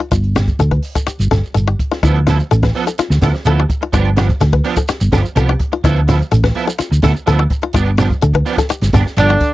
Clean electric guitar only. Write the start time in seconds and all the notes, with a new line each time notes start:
2.03 F3 B3 E4 A4
2.28 F3 B3 E4 A4
2.39 muted clean electric guitar stroke
2.52 muted clean electric guitar stroke
2.63 muted clean electric guitar stroke
2.75 F3 B3 A4, muted clean electric guitar stroke
2.87 muted clean electric guitar stroke
3.10 muted clean electric guitar stroke
3.21 F3 B3 E4 A4
3.34 muted clean electric guitar stroke
3.45 F3 B3 E4 A4
3.69 muted clean electric guitar stroke
3.81 muted clean electric guitar stroke
3.93 F3 B3 D4 G4
4.16 F3 B3 D4 G4
4.29 muted clean electric guitar stroke
4.40 muted clean electric guitar stroke
4.53 muted clean electric guitar stroke
4.64 F3 B3 D4 G4
4.76 muted clean electric guitar stroke
5.00 muted clean electric guitar stroke
5.12 F3 B3 D4 G4
5.24 muted clean electric guitar stroke
5.35 F3 B3 G4, muted clean electric guitar stroke
5.59 muted clean electric guitar stroke
5.72 muted clean electric guitar stroke
5.84 F3 B3 E4 A4
6.08 F3 B3 E4 A4
6.20 muted clean electric guitar stroke
6.31 muted clean electric guitar stroke
6.44 muted clean electric guitar stroke
6.55 F3 B3 E4 A4
6.67 muted clean electric guitar stroke
6.91 muted clean electric guitar stroke
7.02 B3 E4 A4, muted clean electric guitar stroke
7.15 muted clean electric guitar stroke
7.26 F3 B3 E4 A4
7.51 muted clean electric guitar stroke
7.62 muted clean electric guitar stroke
7.74 B3 D4 G4, muted clean electric guitar stroke
7.98 F3 B3 D4 G4
8.10 muted clean electric guitar stroke
8.22 muted clean electric guitar stroke
8.34 muted clean electric guitar stroke
8.45 F3 B3 D4 G4
8.58 muted clean electric guitar stroke
8.82 muted clean electric guitar stroke
8.94 B3 D4 G4
9.06 muted clean electric guitar stroke
9.17 F3 B3 D4 G4
9.41 muted clean electric guitar stroke